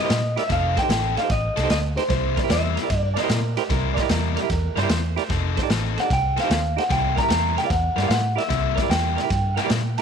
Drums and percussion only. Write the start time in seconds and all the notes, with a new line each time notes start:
0.10 snare, ride
0.37 snare, ride
0.50 kick, snare, ride
0.77 kick, snare, ride
0.90 snare, ride
1.17 snare, ride
1.30 kick, snare, ride
1.57 snare, ride
1.70 snare, ride
1.97 snare, ride
2.10 kick, snare, ride
2.37 kick, snare, ride
2.50 snare, ride
2.77 snare, ride
2.90 kick, snare, ride
3.17 snare, ride
3.29 snare, ride
3.57 snare, ride
3.70 kick, snare, ride
3.97 kick, snare, ride
4.09 snare, ride
4.37 snare, ride
4.50 kick, snare, ride
4.77 snare, ride
4.89 snare, ride
5.17 snare, ride
5.30 kick, snare, ride
5.57 kick, snare, ride
5.70 snare, ride
5.98 snare, ride
6.10 kick, snare, ride
6.37 snare, ride
6.51 snare, ride
6.78 snare, ride
6.90 kick, snare, ride
7.18 kick, snare, ride
7.30 snare, ride
7.58 snare, ride
7.70 kick, snare, ride
7.98 snare, ride
8.10 snare, ride
8.38 snare, ride
8.50 kick, snare, ride
8.78 kick, snare, ride
8.91 snare, ride
9.18 snare, ride
9.30 kick, snare, ride
9.57 snare, ride
9.70 snare, ride
9.98 snare, ride